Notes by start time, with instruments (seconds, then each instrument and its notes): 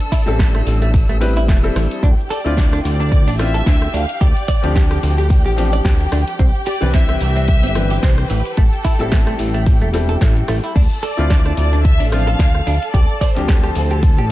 Already playing: string section D4 E6, violin section A4
0.00 closed hi-hat, shaker
0.12 clean electric guitar E4, kick, open hi-hat, shaker
0.26 analog synth bass A1, grand piano G3 C4 E4 A4, closed hi-hat, shaker
0.39 clean electric guitar A3, kick, snare, closed hi-hat, shaker
0.54 clean electric guitar A3, cross-stick, closed hi-hat, shaker
0.67 analog synth bass A1, open hi-hat, shaker
0.82 clean electric guitar A3, closed hi-hat, shaker
0.94 kick, open hi-hat, shaker
1.09 analog synth bass A1, clean electric guitar A3, closed hi-hat, shaker
1.20 grand piano G3 C4 E4 B4, open hi-hat, shaker
1.37 clean electric guitar E4, closed hi-hat, shaker
1.48 analog synth bass E1, clean electric guitar A3, kick, snare, closed hi-hat, shaker
1.63 grand piano G3 C4 E4 A4, closed hi-hat, shaker
1.76 analog synth bass A1, clean electric guitar E3, cross-stick, open hi-hat, shaker
1.91 closed hi-hat, shaker
2.03 analog synth bass D2, clean electric guitar D4, string section G4 G5, kick, closed hi-hat, shaker
2.19 shaker
2.30 clean electric guitar A4, violin section D5, open hi-hat, shaker
2.44 analog synth bass D2, grand piano C4 D4 E4 F4, closed hi-hat, shaker
2.57 clean electric guitar D4, kick, snare, closed hi-hat, shaker
2.73 clean electric guitar D4, cross-stick, closed hi-hat, shaker
2.85 analog synth bass D2, violin section D5, open hi-hat, shaker
3.00 clean electric guitar D4, closed hi-hat, shaker
3.12 kick, closed hi-hat, shaker
3.27 analog synth bass A1, clean electric guitar D4, open hi-hat, shaker
3.39 grand piano C4 D4 E4 F4, violin section E5, cross-stick, open hi-hat, shaker
3.54 clean electric guitar A4, closed hi-hat, shaker
3.66 analog synth bass D2, clean electric guitar D4, kick, snare, closed hi-hat, shaker
3.82 cross-stick, closed hi-hat, shaker
3.94 analog synth bass D2, clean electric guitar D4, violin section F5, open hi-hat, shaker
4.09 closed hi-hat, shaker
4.21 analog synth bass D2, clean electric guitar G4, violin section D5, kick, closed hi-hat, shaker
4.37 closed hi-hat, shaker
4.48 clean electric guitar D5, kick, open hi-hat, shaker
4.62 analog synth bass D2, grand piano F3 C4 D4 G4, closed hi-hat, shaker
4.76 clean electric guitar G4, kick, snare, closed hi-hat, shaker
4.91 clean electric guitar G4, cross-stick, closed hi-hat, shaker
5.03 analog synth bass D2, open hi-hat, shaker
5.18 clean electric guitar G4, closed hi-hat, shaker
5.30 kick, open hi-hat, shaker
5.45 analog synth bass A1, clean electric guitar G4, closed hi-hat, shaker
5.56 grand piano F3 C4 D4 G4, open hi-hat, shaker
5.73 clean electric guitar D5, closed hi-hat, shaker
5.85 analog synth bass D2, clean electric guitar G4, kick, snare, closed hi-hat, shaker
6.00 closed hi-hat, shaker
6.12 analog synth bass D2, clean electric guitar D4, cross-stick, open hi-hat, shaker
6.28 closed hi-hat, shaker
6.39 analog synth bass C2, clean electric guitar C4, kick, closed hi-hat, shaker
6.55 shaker
6.66 clean electric guitar G4, violin section D5, open hi-hat, shaker
6.81 analog synth bass C2, grand piano E3 C4 D4 B4, closed hi-hat, shaker
6.94 clean electric guitar C4, violin section E5, kick, snare, closed hi-hat, shaker
7.09 clean electric guitar C4, cross-stick, closed hi-hat, shaker
7.20 analog synth bass C2, violin section E5, open hi-hat, shaker
7.36 clean electric guitar C4, closed hi-hat, shaker
7.48 kick, closed hi-hat, shaker
7.63 analog synth bass G1, clean electric guitar C4, open hi-hat, shaker
7.75 grand piano E3 C4 D4 B4, cross-stick, open hi-hat, shaker
7.90 clean electric guitar G4, closed hi-hat, shaker
8.02 analog synth bass C2, clean electric guitar C4, violin section C5, kick, snare, closed hi-hat, shaker
8.18 cross-stick, closed hi-hat, shaker
8.29 analog synth bass A1, clean electric guitar E3, violin section B4, open hi-hat, shaker
8.45 closed hi-hat, shaker
8.56 analog synth bass A1, clean electric guitar A3, violin section A4, kick, closed hi-hat, shaker
8.73 closed hi-hat, shaker
8.85 clean electric guitar E4, kick, open hi-hat, shaker
8.99 analog synth bass A1, grand piano G3 C4 E4 A4, closed hi-hat, shaker
9.12 clean electric guitar A3, kick, snare, closed hi-hat, shaker
9.27 clean electric guitar A3, cross-stick, closed hi-hat, shaker
9.39 analog synth bass A1, open hi-hat, shaker
9.54 clean electric guitar A3, closed hi-hat, shaker
9.66 kick, open hi-hat, shaker
9.81 analog synth bass E1, clean electric guitar A3, closed hi-hat, shaker
9.93 grand piano G3 C4 E4 A4, open hi-hat, shaker
10.09 clean electric guitar A4, closed hi-hat, shaker
10.21 analog synth bass A1, clean electric guitar A3, kick, snare, closed hi-hat, shaker
10.36 closed hi-hat, shaker
10.48 analog synth bass A1, clean electric guitar A3, cross-stick, open hi-hat, shaker
10.64 clean electric guitar E4, closed hi-hat, shaker
10.76 analog synth bass D2, clean electric guitar D4, string section A4 A5, kick, closed hi-hat, crash, shaker
10.91 shaker
11.03 clean electric guitar A4, violin section D5, open hi-hat, shaker
11.17 analog synth bass D2, grand piano C4 D4 E4 F4, closed hi-hat, shaker
11.30 clean electric guitar D4, kick, snare, closed hi-hat, shaker
11.45 clean electric guitar D4, cross-stick, closed hi-hat, shaker
11.57 analog synth bass D2, violin section D5, open hi-hat, shaker
11.73 clean electric guitar D4, closed hi-hat, shaker
11.85 violin section E5, kick, closed hi-hat, shaker
12.00 analog synth bass A1, clean electric guitar D4, open hi-hat, shaker
12.12 grand piano F3 C4 D4 F4, violin section F5, cross-stick, open hi-hat, shaker
12.27 clean electric guitar A4, closed hi-hat, shaker
12.39 analog synth bass D2, clean electric guitar D4, kick, snare, closed hi-hat, shaker
12.55 cross-stick, closed hi-hat, shaker
12.67 analog synth bass D2, clean electric guitar D4, open hi-hat, shaker
12.82 closed hi-hat, shaker
12.94 analog synth bass D2, clean electric guitar G4, violin section D5, kick, closed hi-hat, shaker
13.10 closed hi-hat, shaker
13.21 violin section C5, clean electric guitar D5, kick, open hi-hat, shaker
13.35 analog synth bass D2, grand piano F3 C4 D4 G4, closed hi-hat, shaker
13.48 clean electric guitar G4, violin section C5, kick, snare, closed hi-hat, shaker
13.63 clean electric guitar G4, cross-stick, closed hi-hat, shaker
13.75 analog synth bass D2, open hi-hat, shaker
13.91 clean electric guitar G4, closed hi-hat, shaker
14.03 kick, open hi-hat, shaker
14.18 analog synth bass A1, clean electric guitar G4, closed hi-hat, shaker